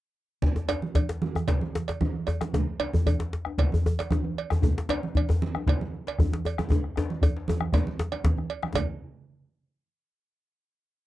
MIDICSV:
0, 0, Header, 1, 4, 480
1, 0, Start_track
1, 0, Tempo, 525394
1, 387, Time_signature, 4, 2, 24, 8
1, 5663, Tempo, 510204
1, 8063, Tempo, 497925
1, 10296, End_track
2, 0, Start_track
2, 0, Title_t, "Bombo"
2, 389, Note_on_c, 9, 43, 75
2, 480, Note_off_c, 9, 43, 0
2, 868, Note_on_c, 9, 43, 78
2, 959, Note_off_c, 9, 43, 0
2, 999, Note_on_c, 9, 37, 23
2, 1090, Note_off_c, 9, 37, 0
2, 1244, Note_on_c, 9, 37, 58
2, 1335, Note_off_c, 9, 37, 0
2, 1354, Note_on_c, 9, 43, 79
2, 1445, Note_off_c, 9, 43, 0
2, 1835, Note_on_c, 9, 37, 24
2, 1835, Note_on_c, 9, 43, 77
2, 1926, Note_off_c, 9, 37, 0
2, 1926, Note_off_c, 9, 43, 0
2, 2200, Note_on_c, 9, 37, 55
2, 2291, Note_off_c, 9, 37, 0
2, 2314, Note_on_c, 9, 43, 82
2, 2405, Note_off_c, 9, 43, 0
2, 2797, Note_on_c, 9, 43, 81
2, 2889, Note_off_c, 9, 43, 0
2, 2917, Note_on_c, 9, 37, 22
2, 3009, Note_off_c, 9, 37, 0
2, 3152, Note_on_c, 9, 37, 60
2, 3243, Note_off_c, 9, 37, 0
2, 3269, Note_on_c, 9, 43, 81
2, 3361, Note_off_c, 9, 43, 0
2, 3750, Note_on_c, 9, 37, 25
2, 3750, Note_on_c, 9, 43, 77
2, 3841, Note_off_c, 9, 37, 0
2, 3841, Note_off_c, 9, 43, 0
2, 4114, Note_on_c, 9, 37, 60
2, 4206, Note_off_c, 9, 37, 0
2, 4227, Note_on_c, 9, 43, 84
2, 4318, Note_off_c, 9, 43, 0
2, 4706, Note_on_c, 9, 43, 87
2, 4797, Note_off_c, 9, 43, 0
2, 4841, Note_on_c, 9, 37, 24
2, 4932, Note_off_c, 9, 37, 0
2, 5069, Note_on_c, 9, 37, 66
2, 5160, Note_off_c, 9, 37, 0
2, 5175, Note_on_c, 9, 43, 85
2, 5267, Note_off_c, 9, 43, 0
2, 5650, Note_on_c, 9, 37, 27
2, 5650, Note_on_c, 9, 43, 91
2, 5744, Note_off_c, 9, 37, 0
2, 5744, Note_off_c, 9, 43, 0
2, 6025, Note_on_c, 9, 37, 71
2, 6119, Note_off_c, 9, 37, 0
2, 6135, Note_on_c, 9, 37, 31
2, 6135, Note_on_c, 9, 43, 104
2, 6229, Note_off_c, 9, 37, 0
2, 6229, Note_off_c, 9, 43, 0
2, 6267, Note_on_c, 9, 37, 30
2, 6361, Note_off_c, 9, 37, 0
2, 6377, Note_on_c, 9, 37, 28
2, 6472, Note_off_c, 9, 37, 0
2, 6620, Note_on_c, 9, 43, 93
2, 6714, Note_off_c, 9, 43, 0
2, 6987, Note_on_c, 9, 37, 72
2, 7081, Note_off_c, 9, 37, 0
2, 7099, Note_on_c, 9, 37, 30
2, 7099, Note_on_c, 9, 43, 100
2, 7193, Note_off_c, 9, 37, 0
2, 7193, Note_off_c, 9, 43, 0
2, 7471, Note_on_c, 9, 37, 32
2, 7565, Note_off_c, 9, 37, 0
2, 7586, Note_on_c, 9, 37, 31
2, 7586, Note_on_c, 9, 43, 101
2, 7680, Note_off_c, 9, 37, 0
2, 7680, Note_off_c, 9, 43, 0
2, 7720, Note_on_c, 9, 37, 31
2, 7814, Note_off_c, 9, 37, 0
2, 7951, Note_on_c, 9, 37, 74
2, 8045, Note_off_c, 9, 37, 0
2, 8071, Note_on_c, 9, 43, 75
2, 8168, Note_off_c, 9, 43, 0
2, 10296, End_track
3, 0, Start_track
3, 0, Title_t, "Djembe"
3, 385, Note_on_c, 9, 64, 58
3, 476, Note_off_c, 9, 64, 0
3, 511, Note_on_c, 9, 63, 68
3, 517, Note_on_c, 9, 62, 21
3, 602, Note_off_c, 9, 63, 0
3, 608, Note_off_c, 9, 62, 0
3, 625, Note_on_c, 9, 62, 61
3, 625, Note_on_c, 9, 63, 61
3, 634, Note_off_c, 9, 62, 0
3, 634, Note_on_c, 9, 62, 69
3, 716, Note_off_c, 9, 63, 0
3, 725, Note_off_c, 9, 62, 0
3, 866, Note_on_c, 9, 64, 59
3, 869, Note_on_c, 9, 62, 69
3, 957, Note_off_c, 9, 64, 0
3, 960, Note_off_c, 9, 62, 0
3, 995, Note_on_c, 9, 62, 44
3, 998, Note_off_c, 9, 62, 0
3, 998, Note_on_c, 9, 62, 71
3, 1089, Note_off_c, 9, 62, 0
3, 1238, Note_on_c, 9, 63, 67
3, 1329, Note_off_c, 9, 63, 0
3, 1354, Note_on_c, 9, 62, 80
3, 1359, Note_off_c, 9, 62, 0
3, 1359, Note_on_c, 9, 62, 65
3, 1359, Note_on_c, 9, 64, 62
3, 1450, Note_off_c, 9, 62, 0
3, 1450, Note_off_c, 9, 64, 0
3, 1598, Note_on_c, 9, 62, 19
3, 1602, Note_off_c, 9, 62, 0
3, 1602, Note_on_c, 9, 62, 77
3, 1693, Note_off_c, 9, 62, 0
3, 1728, Note_on_c, 9, 62, 73
3, 1819, Note_off_c, 9, 62, 0
3, 1836, Note_on_c, 9, 64, 58
3, 1928, Note_off_c, 9, 64, 0
3, 2078, Note_on_c, 9, 62, 19
3, 2080, Note_on_c, 9, 63, 89
3, 2169, Note_off_c, 9, 62, 0
3, 2172, Note_off_c, 9, 63, 0
3, 2203, Note_on_c, 9, 62, 45
3, 2205, Note_off_c, 9, 62, 0
3, 2205, Note_on_c, 9, 62, 62
3, 2297, Note_off_c, 9, 62, 0
3, 2319, Note_on_c, 9, 64, 60
3, 2322, Note_on_c, 9, 62, 66
3, 2410, Note_off_c, 9, 64, 0
3, 2414, Note_off_c, 9, 62, 0
3, 2445, Note_on_c, 9, 62, 20
3, 2537, Note_off_c, 9, 62, 0
3, 2556, Note_on_c, 9, 62, 58
3, 2556, Note_on_c, 9, 63, 56
3, 2648, Note_off_c, 9, 62, 0
3, 2648, Note_off_c, 9, 63, 0
3, 2688, Note_on_c, 9, 64, 71
3, 2780, Note_off_c, 9, 64, 0
3, 2799, Note_on_c, 9, 64, 64
3, 2802, Note_on_c, 9, 63, 90
3, 2891, Note_off_c, 9, 64, 0
3, 2894, Note_off_c, 9, 63, 0
3, 2923, Note_on_c, 9, 62, 66
3, 2925, Note_off_c, 9, 62, 0
3, 2925, Note_on_c, 9, 62, 45
3, 3016, Note_off_c, 9, 62, 0
3, 3044, Note_on_c, 9, 62, 70
3, 3135, Note_off_c, 9, 62, 0
3, 3164, Note_on_c, 9, 63, 49
3, 3255, Note_off_c, 9, 63, 0
3, 3276, Note_on_c, 9, 62, 66
3, 3276, Note_on_c, 9, 64, 66
3, 3367, Note_off_c, 9, 62, 0
3, 3367, Note_off_c, 9, 64, 0
3, 3416, Note_on_c, 9, 64, 70
3, 3507, Note_off_c, 9, 64, 0
3, 3521, Note_on_c, 9, 62, 21
3, 3528, Note_on_c, 9, 63, 94
3, 3612, Note_off_c, 9, 62, 0
3, 3619, Note_off_c, 9, 63, 0
3, 3644, Note_on_c, 9, 62, 52
3, 3655, Note_off_c, 9, 62, 0
3, 3655, Note_on_c, 9, 62, 70
3, 3747, Note_off_c, 9, 62, 0
3, 3753, Note_on_c, 9, 64, 67
3, 3763, Note_on_c, 9, 62, 68
3, 3844, Note_off_c, 9, 64, 0
3, 3855, Note_off_c, 9, 62, 0
3, 3877, Note_on_c, 9, 63, 48
3, 3968, Note_off_c, 9, 63, 0
3, 3994, Note_on_c, 9, 62, 22
3, 4085, Note_off_c, 9, 62, 0
3, 4118, Note_on_c, 9, 62, 54
3, 4126, Note_on_c, 9, 64, 65
3, 4209, Note_off_c, 9, 62, 0
3, 4218, Note_off_c, 9, 64, 0
3, 4223, Note_on_c, 9, 64, 72
3, 4236, Note_on_c, 9, 63, 85
3, 4314, Note_off_c, 9, 64, 0
3, 4327, Note_off_c, 9, 63, 0
3, 4360, Note_on_c, 9, 62, 23
3, 4366, Note_off_c, 9, 62, 0
3, 4366, Note_on_c, 9, 62, 74
3, 4457, Note_off_c, 9, 62, 0
3, 4468, Note_on_c, 9, 62, 71
3, 4468, Note_on_c, 9, 63, 71
3, 4470, Note_off_c, 9, 62, 0
3, 4470, Note_on_c, 9, 62, 68
3, 4560, Note_off_c, 9, 63, 0
3, 4562, Note_off_c, 9, 62, 0
3, 4705, Note_on_c, 9, 64, 70
3, 4796, Note_off_c, 9, 64, 0
3, 4830, Note_on_c, 9, 62, 57
3, 4839, Note_on_c, 9, 64, 73
3, 4922, Note_off_c, 9, 62, 0
3, 4930, Note_off_c, 9, 64, 0
3, 5080, Note_on_c, 9, 63, 53
3, 5171, Note_off_c, 9, 63, 0
3, 5184, Note_on_c, 9, 62, 66
3, 5184, Note_on_c, 9, 64, 72
3, 5276, Note_off_c, 9, 62, 0
3, 5276, Note_off_c, 9, 64, 0
3, 5428, Note_on_c, 9, 62, 24
3, 5519, Note_off_c, 9, 62, 0
3, 5547, Note_on_c, 9, 62, 58
3, 5638, Note_off_c, 9, 62, 0
3, 5660, Note_on_c, 9, 64, 69
3, 5661, Note_off_c, 9, 64, 0
3, 5661, Note_on_c, 9, 64, 87
3, 5755, Note_off_c, 9, 64, 0
3, 5785, Note_on_c, 9, 63, 51
3, 5790, Note_on_c, 9, 62, 73
3, 5879, Note_off_c, 9, 63, 0
3, 5884, Note_off_c, 9, 62, 0
3, 5901, Note_on_c, 9, 63, 69
3, 5910, Note_on_c, 9, 62, 23
3, 5995, Note_off_c, 9, 63, 0
3, 6004, Note_off_c, 9, 62, 0
3, 6029, Note_on_c, 9, 62, 57
3, 6032, Note_on_c, 9, 63, 63
3, 6123, Note_off_c, 9, 62, 0
3, 6126, Note_off_c, 9, 63, 0
3, 6149, Note_on_c, 9, 64, 74
3, 6150, Note_on_c, 9, 63, 93
3, 6243, Note_off_c, 9, 64, 0
3, 6244, Note_off_c, 9, 63, 0
3, 6277, Note_on_c, 9, 62, 26
3, 6371, Note_off_c, 9, 62, 0
3, 6392, Note_on_c, 9, 62, 68
3, 6392, Note_on_c, 9, 63, 72
3, 6393, Note_off_c, 9, 63, 0
3, 6393, Note_on_c, 9, 63, 85
3, 6486, Note_off_c, 9, 62, 0
3, 6487, Note_off_c, 9, 63, 0
3, 6523, Note_on_c, 9, 62, 23
3, 6617, Note_off_c, 9, 62, 0
3, 6630, Note_on_c, 9, 64, 69
3, 6633, Note_on_c, 9, 63, 90
3, 6724, Note_off_c, 9, 64, 0
3, 6728, Note_off_c, 9, 63, 0
3, 6760, Note_on_c, 9, 62, 52
3, 6854, Note_off_c, 9, 62, 0
3, 6875, Note_on_c, 9, 62, 21
3, 6881, Note_on_c, 9, 63, 98
3, 6969, Note_off_c, 9, 62, 0
3, 6975, Note_off_c, 9, 63, 0
3, 6997, Note_on_c, 9, 62, 23
3, 6997, Note_on_c, 9, 63, 56
3, 7091, Note_off_c, 9, 62, 0
3, 7091, Note_off_c, 9, 63, 0
3, 7112, Note_on_c, 9, 62, 71
3, 7112, Note_on_c, 9, 64, 69
3, 7114, Note_on_c, 9, 63, 95
3, 7206, Note_off_c, 9, 62, 0
3, 7206, Note_off_c, 9, 64, 0
3, 7208, Note_off_c, 9, 63, 0
3, 7237, Note_on_c, 9, 62, 24
3, 7331, Note_off_c, 9, 62, 0
3, 7353, Note_on_c, 9, 62, 96
3, 7447, Note_off_c, 9, 62, 0
3, 7473, Note_on_c, 9, 62, 56
3, 7567, Note_off_c, 9, 62, 0
3, 7584, Note_on_c, 9, 62, 21
3, 7584, Note_on_c, 9, 64, 64
3, 7589, Note_off_c, 9, 62, 0
3, 7589, Note_on_c, 9, 62, 92
3, 7678, Note_off_c, 9, 64, 0
3, 7683, Note_off_c, 9, 62, 0
3, 7709, Note_on_c, 9, 62, 21
3, 7709, Note_on_c, 9, 63, 51
3, 7803, Note_off_c, 9, 62, 0
3, 7803, Note_off_c, 9, 63, 0
3, 7946, Note_on_c, 9, 62, 47
3, 8040, Note_off_c, 9, 62, 0
3, 8049, Note_on_c, 9, 64, 69
3, 8068, Note_on_c, 9, 62, 96
3, 8145, Note_off_c, 9, 64, 0
3, 8164, Note_off_c, 9, 62, 0
3, 10296, End_track
4, 0, Start_track
4, 0, Title_t, "Drums"
4, 385, Note_on_c, 9, 64, 77
4, 477, Note_off_c, 9, 64, 0
4, 627, Note_on_c, 9, 56, 59
4, 719, Note_off_c, 9, 56, 0
4, 752, Note_on_c, 9, 63, 54
4, 844, Note_off_c, 9, 63, 0
4, 874, Note_on_c, 9, 56, 47
4, 965, Note_off_c, 9, 56, 0
4, 997, Note_on_c, 9, 63, 21
4, 1088, Note_off_c, 9, 63, 0
4, 1111, Note_on_c, 9, 63, 68
4, 1203, Note_off_c, 9, 63, 0
4, 1348, Note_on_c, 9, 64, 65
4, 1349, Note_on_c, 9, 56, 45
4, 1439, Note_off_c, 9, 64, 0
4, 1441, Note_off_c, 9, 56, 0
4, 1474, Note_on_c, 9, 63, 53
4, 1566, Note_off_c, 9, 63, 0
4, 1717, Note_on_c, 9, 56, 38
4, 1809, Note_off_c, 9, 56, 0
4, 1834, Note_on_c, 9, 63, 68
4, 1925, Note_off_c, 9, 63, 0
4, 2072, Note_on_c, 9, 56, 40
4, 2163, Note_off_c, 9, 56, 0
4, 2203, Note_on_c, 9, 63, 49
4, 2294, Note_off_c, 9, 63, 0
4, 2321, Note_on_c, 9, 64, 69
4, 2413, Note_off_c, 9, 64, 0
4, 2556, Note_on_c, 9, 56, 56
4, 2647, Note_off_c, 9, 56, 0
4, 2681, Note_on_c, 9, 63, 54
4, 2773, Note_off_c, 9, 63, 0
4, 2802, Note_on_c, 9, 56, 43
4, 2894, Note_off_c, 9, 56, 0
4, 2918, Note_on_c, 9, 63, 20
4, 3009, Note_off_c, 9, 63, 0
4, 3274, Note_on_c, 9, 64, 60
4, 3281, Note_on_c, 9, 56, 45
4, 3366, Note_off_c, 9, 64, 0
4, 3372, Note_off_c, 9, 56, 0
4, 3401, Note_on_c, 9, 63, 47
4, 3492, Note_off_c, 9, 63, 0
4, 3645, Note_on_c, 9, 56, 41
4, 3736, Note_off_c, 9, 56, 0
4, 3751, Note_on_c, 9, 63, 61
4, 3842, Note_off_c, 9, 63, 0
4, 4005, Note_on_c, 9, 56, 42
4, 4096, Note_off_c, 9, 56, 0
4, 4118, Note_on_c, 9, 63, 46
4, 4209, Note_off_c, 9, 63, 0
4, 4230, Note_on_c, 9, 64, 64
4, 4321, Note_off_c, 9, 64, 0
4, 4478, Note_on_c, 9, 56, 61
4, 4570, Note_off_c, 9, 56, 0
4, 4597, Note_on_c, 9, 63, 47
4, 4689, Note_off_c, 9, 63, 0
4, 4723, Note_on_c, 9, 56, 47
4, 4815, Note_off_c, 9, 56, 0
4, 4837, Note_on_c, 9, 63, 20
4, 4928, Note_off_c, 9, 63, 0
4, 4953, Note_on_c, 9, 63, 66
4, 5044, Note_off_c, 9, 63, 0
4, 5186, Note_on_c, 9, 64, 73
4, 5200, Note_on_c, 9, 56, 49
4, 5278, Note_off_c, 9, 64, 0
4, 5292, Note_off_c, 9, 56, 0
4, 5310, Note_on_c, 9, 63, 52
4, 5402, Note_off_c, 9, 63, 0
4, 5557, Note_on_c, 9, 56, 42
4, 5648, Note_off_c, 9, 56, 0
4, 5661, Note_on_c, 9, 63, 68
4, 5756, Note_off_c, 9, 63, 0
4, 5913, Note_on_c, 9, 56, 43
4, 6007, Note_off_c, 9, 56, 0
4, 6031, Note_on_c, 9, 63, 59
4, 6125, Note_off_c, 9, 63, 0
4, 6139, Note_on_c, 9, 63, 24
4, 6139, Note_on_c, 9, 64, 75
4, 6233, Note_off_c, 9, 63, 0
4, 6233, Note_off_c, 9, 64, 0
4, 6513, Note_on_c, 9, 63, 51
4, 6607, Note_off_c, 9, 63, 0
4, 6632, Note_on_c, 9, 56, 44
4, 6726, Note_off_c, 9, 56, 0
4, 6867, Note_on_c, 9, 63, 69
4, 6961, Note_off_c, 9, 63, 0
4, 7109, Note_on_c, 9, 64, 67
4, 7112, Note_on_c, 9, 56, 46
4, 7203, Note_off_c, 9, 64, 0
4, 7206, Note_off_c, 9, 56, 0
4, 7235, Note_on_c, 9, 63, 53
4, 7329, Note_off_c, 9, 63, 0
4, 7354, Note_on_c, 9, 63, 22
4, 7448, Note_off_c, 9, 63, 0
4, 7470, Note_on_c, 9, 56, 42
4, 7479, Note_on_c, 9, 63, 20
4, 7564, Note_off_c, 9, 56, 0
4, 7573, Note_off_c, 9, 63, 0
4, 7595, Note_on_c, 9, 63, 60
4, 7689, Note_off_c, 9, 63, 0
4, 7718, Note_on_c, 9, 63, 20
4, 7812, Note_off_c, 9, 63, 0
4, 7827, Note_on_c, 9, 56, 42
4, 7921, Note_off_c, 9, 56, 0
4, 7952, Note_on_c, 9, 63, 43
4, 8047, Note_off_c, 9, 63, 0
4, 8063, Note_on_c, 9, 64, 77
4, 8068, Note_on_c, 9, 56, 73
4, 8159, Note_off_c, 9, 64, 0
4, 8164, Note_off_c, 9, 56, 0
4, 10296, End_track
0, 0, End_of_file